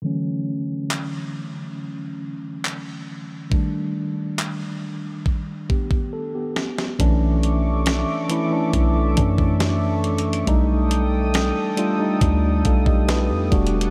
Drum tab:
HH |------------------------------------------------|------------------------------------------------|x-----x-----x-----x-----x-----x-----x-----x-x-x-|x-----x-----x-----x-----x-----x-----x-----x-x-x-|
CP |------------x-----------------------x-----------|------------x-----------------------------------|------------------------------------------------|------------------------------------------------|
SD |------------------------------------------------|------------------------------------------o--o--|------------o-----------------------o-----------|------------o-----------------------o-----------|
BD |------------------------------------------------|o-----------------------o-----o--o--------------|o-----------------------o-----o--o--------------|o-----------------------o-----o--o--------o-----|